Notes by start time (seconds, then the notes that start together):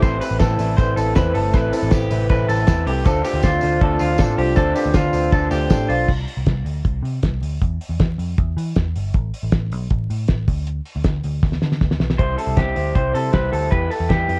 0.02 A1 A2 C3 E3 A3 C4 E4 A4 B4 C5, kick, closed hi-hat, tambourine
0.21 C4 E4 A4 B4, open hi-hat, tambourine
0.31 A1
0.40 A1 A3 C4 E4 A4 B4, kick, snare, closed hi-hat, tambourine
0.59 A1 A3 C4 E4 A4 B4 D5, open hi-hat, tambourine
0.77 A1 A2 E3 A3 C4 E4 A4 B4 C5, kick, closed hi-hat, tambourine
0.96 A1 C4 E4 A4 B4, open hi-hat, tambourine
1.15 E2 A3 C4 E4 A4 B4 C5, kick, snare, closed hi-hat, tambourine
1.34 G1 C4 E4 A4 B4, open hi-hat
1.53 A1 A2 E3 A3 C4 E4 A4 B4, kick, closed hi-hat, tambourine
1.73 C4 E4 A4 B4, open hi-hat, tambourine
1.83 A1
1.91 A3 C4 E4 G4 A4 B4, kick, snare, closed hi-hat, tambourine
2.10 A1 A3 C4 E4 A4 B4, open hi-hat, tambourine
2.29 A1 A2 E3 A3 C4 E4 A4 B4 C5, kick, closed hi-hat, tambourine
2.48 A1 C4 E4 A4 B4, open hi-hat, tambourine
2.66 E2 A3 C4 E4 A4 B4, kick, snare, closed hi-hat, tambourine
2.85 C2 A3 C4 E4 G4 A4 B4, open hi-hat
3.04 D2 D3 A3 C4 D4 F4 A4 C5, kick, closed hi-hat, tambourine
3.24 D4 F4 G4 A4 C5, open hi-hat, tambourine
3.34 D2
3.42 D2 A3 C4 D4 F4 A4 C5, kick, snare, closed hi-hat, tambourine
3.61 D2 C4 D4 F4 A4 C5, open hi-hat, tambourine
3.80 D2 D3 A3 C4 D4 F4 A4 C5 D5, kick, closed hi-hat
3.99 D2 D4 F4 A4 C5, open hi-hat, tambourine
4.18 A2 A3 C4 D4 F4 A4 C5, kick, snare, closed hi-hat, tambourine
4.37 C2 C4 D4 F4 G4 A4 C5, open hi-hat
4.56 D2 D3 A3 C4 D4 F4 A4 C5, kick, closed hi-hat, tambourine
4.75 D4 F4 G4 A4 B4, open hi-hat, tambourine
4.86 D2
4.94 D2 A3 C4 D4 F4 A4 C5, kick, snare, closed hi-hat, tambourine
5.13 D2 C4 D4 F4 A4 C5, open hi-hat, tambourine
5.31 D2 D3 A3 C4 D4 F4 A4 C5, kick, closed hi-hat, tambourine
5.51 D2 D4 F4 G4 A4 C5 F5, open hi-hat, tambourine
5.61 G5
5.69 A2 A3 C4 D4 F4 A4 C5 A5, kick, snare, closed hi-hat, tambourine
5.88 B1 C4 D4 F4 A4 C5 D5 C6, open hi-hat
6.08 C2, kick, crash
6.28 open hi-hat
6.37 C2
6.46 C2, kick, snare, closed hi-hat
6.65 D2, open hi-hat
6.85 C2, kick, closed hi-hat
7.03 C3, open hi-hat
7.23 C2, kick, snare, closed hi-hat
7.42 D2, open hi-hat
7.62 E2, kick, closed hi-hat
7.81 open hi-hat
7.89 E2
8.00 E2, kick, snare, closed hi-hat
8.18 F2, open hi-hat
8.38 E2, kick, closed hi-hat
8.57 E3, open hi-hat
8.76 E2, kick, snare, closed hi-hat
8.96 G1, open hi-hat
9.14 A1, kick, closed hi-hat
9.34 open hi-hat
9.43 A1
9.52 A1, kick, snare, closed hi-hat
9.72 B1, open hi-hat
9.90 A1, kick, closed hi-hat
10.10 A2, open hi-hat
10.28 A1, kick, snare, closed hi-hat
10.47 D2, kick, open hi-hat
10.67 closed hi-hat
10.85 open hi-hat
10.96 D2
11.04 D2, kick, snare, closed hi-hat
11.23 D2, open hi-hat
11.43 D2, kick, snare
11.52 snare
11.62 D3, snare
11.72 snare
11.81 D2, kick, snare
11.91 snare
12.00 B1, snare
12.10 snare
12.18 C2 C3 E3 G3 C4 E4 G4 C5, kick, closed hi-hat
12.38 G3 C4 E4 G4 A4 C5, open hi-hat
12.47 C2
12.56 C2 C3 E3 G3 C4 E4 G4 C5, kick, snare, closed hi-hat
12.75 D2 G3 C4 E4 G4 C5, open hi-hat
12.94 C2 G3 C4 E4 G4 C5, kick, closed hi-hat
13.13 C3 G3 C4 E4 G4 A4 C5, open hi-hat
13.32 C2 C3 E3 G3 C4 E4 G4 B4 C5, kick, snare, closed hi-hat
13.51 D2 E4 G4 A4, open hi-hat
13.70 E2 E3 G3 E4 G4 B4, kick, closed hi-hat
13.89 E4 G4 A4 B4, open hi-hat
14.00 E2
14.09 E2 E3 G3 E4 G4 B4, kick, snare, closed hi-hat
14.28 F2 E4 G4 B4, open hi-hat